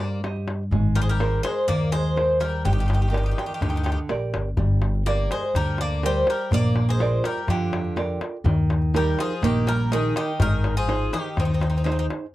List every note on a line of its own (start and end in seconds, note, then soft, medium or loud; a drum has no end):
0.00 0.73 G2 medium
0.00 0.22 G3 medium
0.00 0.21 A#3 medium
0.00 0.20 D5 medium
0.00 darbuka tek medium
0.24 0.62 G4 medium
0.24 0.62 C5 soft
0.24 0.62 D#5 medium
0.24 darbuka tek medium
0.36 darbuka tek soft
0.48 darbuka tek medium
0.71 1.39 G#1 loud
0.71 1.19 G#3 medium
0.71 darbuka dum medium
0.95 1.02 G3 medium
0.95 1.01 A#4 medium
0.95 darbuka tek medium
1.02 1.09 G#3 medium
1.02 1.09 C5 medium
1.08 1.42 G3 medium
1.08 1.41 A#4 medium
1.08 darbuka tek soft
1.20 1.58 G#4 medium
1.20 1.58 A#4 soft
1.20 1.59 C5 medium
1.20 darbuka tek medium
1.43 1.67 G#3 medium
1.43 1.66 C5 loud
1.43 darbuka tek medium
1.68 2.66 D#2 medium
1.68 2.15 D#3 medium
1.68 1.91 A#3 medium
1.68 1.90 D5 loud
1.68 darbuka tek medium
1.68 darbuka dum medium
1.92 2.37 G#3 medium
1.92 2.41 C5 loud
1.92 darbuka tek medium
2.16 2.55 G#4 soft
2.16 2.55 A#4 soft
2.16 2.55 C5 medium
2.16 darbuka tek medium
2.29 darbuka tek soft
2.40 2.63 G3 medium
2.40 2.63 A#4 medium
2.40 darbuka tek medium
2.65 3.32 G1 loud
2.65 2.71 D3 medium
2.65 3.11 G3 medium
2.65 2.72 G4 medium
2.65 darbuka dum loud
2.72 2.77 D#3 soft
2.72 2.79 G4 medium
2.78 2.85 D#3 soft
2.78 2.87 G4 medium
2.78 darbuka tek soft
2.86 2.92 D#3 soft
2.86 2.93 G4 medium
2.90 3.00 D#3 soft
2.90 darbuka tek medium
2.94 3.01 G4 medium
3.01 3.06 D#3 soft
3.01 3.09 G4 soft
3.01 darbuka tek soft
3.08 3.15 D#3 soft
3.08 3.16 G4 medium
3.08 3.51 G4 soft
3.12 3.51 A#4 soft
3.12 3.51 D5 medium
3.12 darbuka tek medium
3.16 3.22 D#3 soft
3.16 3.24 G4 soft
3.23 3.31 D#3 soft
3.23 3.30 G4 medium
3.31 3.38 D#3 soft
3.31 3.38 G4 soft
3.38 3.46 D#3 soft
3.38 3.45 G4 soft
3.38 darbuka tek medium
3.46 3.53 D#3 soft
3.46 3.53 G4 medium
3.51 3.61 D#3 soft
3.51 3.61 G4 medium
3.51 darbuka tek soft
3.61 3.95 D2 medium
3.61 4.08 D3 medium
3.61 3.68 D#3 soft
3.61 3.69 G4 soft
3.61 darbuka tek medium
3.61 darbuka dum medium
3.69 3.75 D#3 soft
3.69 3.76 G4 medium
3.74 3.82 D#3 soft
3.74 3.83 G4 soft
3.74 darbuka tek soft
3.83 3.90 D#3 medium
3.83 3.91 G4 medium
3.83 darbuka tek medium
3.92 3.98 D#3 soft
3.92 3.98 G4 medium
4.09 4.31 A#1 medium
4.09 4.48 G4 soft
4.09 4.48 A#4 soft
4.09 4.48 D5 medium
4.09 darbuka tek medium
4.34 4.56 G1 medium
4.34 darbuka tek medium
4.57 5.26 G1 medium
4.57 5.04 G3 medium
4.57 darbuka dum medium
4.82 darbuka tek medium
4.95 darbuka tek soft
5.06 5.29 A#3 medium
5.06 5.45 G4 soft
5.06 5.45 A#4 soft
5.06 5.29 D5 loud
5.06 5.45 D5 medium
5.06 darbuka tek medium
5.19 darbuka tek soft
5.31 5.54 G#3 medium
5.31 5.54 C5 medium
5.31 darbuka tek medium
5.43 darbuka tek soft
5.54 6.22 D2 medium
5.54 6.02 D3 medium
5.54 5.78 G3 medium
5.54 5.80 A#4 loud
5.54 darbuka tek medium
5.54 darbuka dum medium
5.67 darbuka tek soft
5.78 6.02 A#3 medium
5.78 6.05 D5 medium
5.78 darbuka tek medium
5.91 darbuka tek soft
6.03 6.27 G3 medium
6.03 6.42 G4 soft
6.03 6.42 A#4 soft
6.03 6.27 C5 loud
6.03 6.42 D5 medium
6.03 darbuka tek medium
6.27 6.51 G3 medium
6.27 6.51 A#4 medium
6.27 darbuka tek medium
6.51 7.19 A#1 loud
6.51 6.99 A#3 medium
6.51 6.86 A#3 medium
6.51 6.87 D5 loud
6.51 darbuka dum medium
6.76 darbuka tek medium
6.88 7.22 G#3 medium
6.88 7.23 C5 medium
6.88 darbuka tek soft
7.00 7.39 F4 medium
7.00 7.39 A#4 soft
7.00 7.39 D5 medium
7.00 darbuka tek medium
7.12 darbuka tek soft
7.24 7.47 G3 medium
7.24 7.47 A#4 medium
7.24 darbuka tek medium
7.36 darbuka tek soft
7.47 8.16 F2 medium
7.47 8.18 D3 medium
7.47 7.96 F3 medium
7.47 8.18 G4 medium
7.47 darbuka tek medium
7.47 darbuka dum medium
7.60 darbuka tek soft
7.73 darbuka tek medium
7.85 darbuka tek soft
7.96 8.35 F4 medium
7.96 8.36 A#4 soft
7.96 8.36 D5 medium
7.96 darbuka tek medium
8.21 darbuka tek medium
8.44 9.13 D#2 loud
8.44 8.92 D#3 medium
8.44 darbuka dum loud
8.70 darbuka tek medium
8.82 darbuka tek soft
8.94 9.18 G3 medium
8.94 9.33 D#4 medium
8.94 9.33 G4 medium
8.94 9.33 A#4 medium
8.94 9.20 A#4 medium
8.94 darbuka tek medium
9.06 darbuka tek soft
9.19 9.42 F3 medium
9.19 9.44 G#4 loud
9.19 darbuka tek medium
9.31 darbuka tek soft
9.42 10.10 A#1 medium
9.42 9.66 D#3 medium
9.42 9.90 A#3 medium
9.42 9.66 G4 medium
9.42 darbuka tek medium
9.42 darbuka dum medium
9.56 darbuka tek soft
9.67 9.90 G3 medium
9.67 9.93 A#4 loud
9.67 darbuka tek medium
9.79 darbuka tek soft
9.92 10.14 D#3 medium
9.92 10.31 D#4 medium
9.92 10.31 G4 soft
9.92 10.15 G#4 loud
9.92 10.31 A#4 medium
9.92 darbuka tek medium
10.16 10.39 D#3 medium
10.16 10.39 G4 medium
10.16 darbuka tek medium
10.40 11.08 G#1 medium
10.40 10.74 D#3 medium
10.40 10.88 G#3 medium
10.40 10.75 A#4 loud
10.40 darbuka dum loud
10.64 darbuka tek medium
10.77 11.11 F3 medium
10.77 11.13 G#4 medium
10.88 11.27 D#4 medium
10.88 11.28 G#4 soft
10.88 11.28 C5 medium
10.88 darbuka tek medium
11.01 darbuka tek soft
11.13 11.36 D#3 medium
11.13 11.36 G4 medium
11.13 darbuka tek medium
11.37 12.06 D#2 medium
11.37 11.44 C3 medium
11.37 11.85 D#3 medium
11.37 11.44 D#4 medium
11.37 darbuka tek medium
11.37 darbuka dum medium
11.45 11.52 C3 soft
11.45 11.52 D#4 medium
11.49 darbuka tek soft
11.54 11.60 C3 soft
11.54 11.61 D#4 soft
11.61 11.68 C3 soft
11.61 11.68 D#4 soft
11.61 darbuka tek medium
11.70 11.75 C3 soft
11.70 11.76 D#4 soft
11.74 11.83 C3 soft
11.74 11.83 D#4 soft
11.74 darbuka tek soft
11.84 11.90 C3 soft
11.84 11.91 D#4 medium
11.84 12.25 D#4 medium
11.84 12.25 G#4 soft
11.84 12.25 C5 medium
11.84 darbuka tek medium
11.91 11.98 C3 soft
11.91 11.98 D#4 soft
11.98 12.05 C3 soft
11.98 12.05 D#4 medium
11.98 darbuka tek soft
12.10 darbuka tek medium